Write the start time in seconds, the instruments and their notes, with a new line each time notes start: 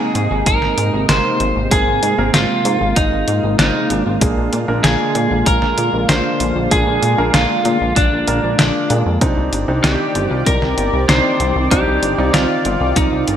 Already playing: analog synth pad C3 G#3 A#3 D#4, grand piano A#3 C4 A#4, lead electric guitar G#4
0.15 analog synth bass G#2, closed hi-hat
0.31 analog synth bass G#1
0.46 analog synth bass G#1, lead electric guitar A#4, kick, closed hi-hat
0.62 analog synth bass G#1, snare
0.78 analog synth bass G#2, closed hi-hat
0.93 analog synth bass G#1
1.09 analog synth bass G#1, grand piano A#3 C4 A#4, lead electric guitar C5, snare, closed hi-hat
1.40 analog synth bass G#1, closed hi-hat
1.56 analog synth bass G#1
1.71 analog synth bass G#1, grand piano A#3 C4 G#4, analog synth pad F4, lead electric guitar G#4, kick, closed hi-hat
1.87 analog synth bass G#1
2.03 analog synth bass G#2, closed hi-hat
2.18 analog synth bass G#1, grand piano A#3 C4 A#4
2.34 analog synth bass G#1, lead electric guitar F4, snare, closed hi-hat
2.65 analog synth bass G#2, closed hi-hat
2.81 analog synth bass G#1
2.96 analog synth bass G#1, lead electric guitar D#4, kick, closed hi-hat
3.12 analog synth bass G#1
3.28 analog synth bass G#2, closed hi-hat
3.43 analog synth bass G#1
3.59 analog synth bass G#1, grand piano A#3 C4 A#4, lead electric guitar D#4, snare, closed hi-hat
3.90 analog synth bass G#1, closed hi-hat
4.06 analog synth bass G#1
4.21 analog synth bass A#1, analog synth pad D3, grand piano A#3 D4 G#4, kick, closed hi-hat
4.37 analog synth bass A#1
4.53 analog synth bass A#2, closed hi-hat
4.68 analog synth bass A#1, grand piano A#3 D4 A#4
4.84 analog synth bass A#1, lead electric guitar G#4, snare, closed hi-hat
5.15 analog synth bass A#2, closed hi-hat
5.31 analog synth bass A#1
5.46 analog synth bass A#1, lead electric guitar A#4, kick, closed hi-hat
5.62 analog synth bass A#1, snare
5.78 analog synth bass A#2, closed hi-hat
5.93 analog synth bass A#1
6.09 analog synth bass A#1, grand piano A#3 D4 A#4, lead electric guitar C5, snare, closed hi-hat
6.40 analog synth bass A#1, closed hi-hat
6.56 analog synth bass A#1
6.71 analog synth bass A#1, grand piano A#3 D4 G#4, lead electric guitar G#4, kick, closed hi-hat
6.87 analog synth bass A#1
7.03 analog synth bass A#2, closed hi-hat
7.18 analog synth bass A#1, grand piano A#3 D4 A#4
7.34 analog synth bass A#1, lead electric guitar F4, snare, closed hi-hat
7.65 analog synth bass A#2, closed hi-hat
7.81 analog synth bass A#1
7.96 analog synth bass A#1, lead electric guitar D4, kick, closed hi-hat
8.12 analog synth bass A#1
8.28 analog synth bass A#1, grand piano A#3 D4 A#4, closed hi-hat
8.43 analog synth bass A#1
8.59 analog synth bass A#1, lead electric guitar D4, snare, closed hi-hat
8.90 analog synth bass A#2, grand piano A#3 D4 G#4, closed hi-hat
9.06 analog synth bass F2
9.21 analog synth bass C2, analog synth pad D#3 C4 G4 D5, grand piano C4 D4 D#4, kick, closed hi-hat
9.37 analog synth bass C2
9.53 analog synth bass G1, closed hi-hat
9.68 analog synth bass C2, grand piano C4 D4 D#4
9.84 analog synth bass C2, lead electric guitar G4, snare, closed hi-hat
10.15 analog synth bass G1, closed hi-hat
10.31 analog synth bass C2, lead electric guitar F4
10.46 analog synth bass C2, lead electric guitar A#4, kick, closed hi-hat
10.62 analog synth bass C2, snare
10.78 analog synth bass G1, closed hi-hat
10.93 analog synth bass C2
11.09 analog synth bass C2, grand piano C4 D4 D#4, lead electric guitar C5, snare, closed hi-hat
11.40 analog synth bass C2, closed hi-hat
11.56 analog synth bass C2
11.71 analog synth bass C2, grand piano C4 D4 D#4, analog synth pad F4, lead electric guitar G4, kick, closed hi-hat
11.87 analog synth bass C2
12.03 analog synth bass G1, closed hi-hat
12.18 analog synth bass C2, grand piano C4 D#4 D5
12.34 analog synth bass C2, lead electric guitar F4, snare, closed hi-hat
12.65 analog synth bass G1, closed hi-hat
12.81 analog synth bass C2
12.96 analog synth bass C2, lead electric guitar D#4, kick, closed hi-hat
13.12 analog synth bass C2
13.28 analog synth bass G1, closed hi-hat